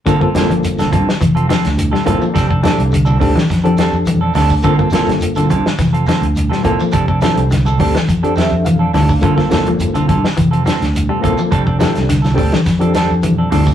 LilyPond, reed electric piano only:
\new Staff \with { instrumentName = "Reed electric piano" } { \time 4/4 \key g \dorian \tempo 4 = 105 << { r1 | r1 | r1 | r2 r8 e''8 f''4 |
r1 | r1 | } \\ { <bes c' f' a'>16 <bes c' f' a'>16 <bes c' f' a'>4 r2 <bes c' f' a'>8 | r8 <c' d' g' a'>8 r8 <c' d' g' a'>8 r16 <c' d' g' a'>4 r8. | <bes c' f' a'>16 <bes c' f' a'>16 <bes c' f' a'>4 r2 <bes c' f' a'>8 | r8 <c' d' g' a'>8 r8 <c' d' g' a'>8 r16 <c' d' g' a'>4 r8. |
<bes c' f' a'>16 <bes c' f' a'>16 <bes c' f' a'>4 r2 <bes c' f' a'>8 | r8 <c' d' g' a'>8 r8 <c' d' g' a'>8 r16 <c' d' g' a'>4 r8. | } >> }